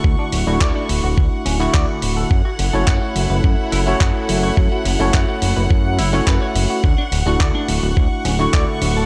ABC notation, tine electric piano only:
X:1
M:4/4
L:1/16
Q:1/4=106
K:D
V:1 name="Tine electric piano"
[D,A,EFc']3 [A,DEFc']8 [D,A,EFc']4- [D,A,EFc'] | z3 [A,CEFc]8 [A,CEFc]4- [A,CEFc]- | [A,CEFc]3 [A,CEFc]8 [A,CEFc]4- [A,CEFc] | z3 [A,DEFc']8 [D,A,EFc']4- [D,A,EFc'] |]